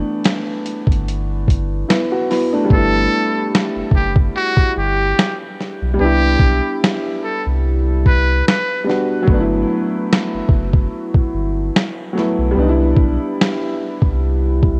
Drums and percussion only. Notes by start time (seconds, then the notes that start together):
0.24 finger snap, snare, closed hi-hat
0.66 closed hi-hat
0.87 kick
0.92 closed hi-hat
1.08 closed hi-hat
1.48 kick, closed hi-hat
1.90 finger snap, snare, closed hi-hat
2.31 snare, open hi-hat
2.70 kick
3.55 finger snap, snare
3.92 kick
4.16 kick
4.57 kick
5.19 finger snap, snare
5.61 snare
6.39 kick
6.84 finger snap, snare
8.06 kick
8.48 finger snap, snare
8.90 snare
9.28 kick
10.13 finger snap, snare
10.49 kick
10.73 kick
11.14 kick
11.76 finger snap, snare
12.18 snare
12.97 kick
13.41 finger snap, snare
14.02 kick
14.63 kick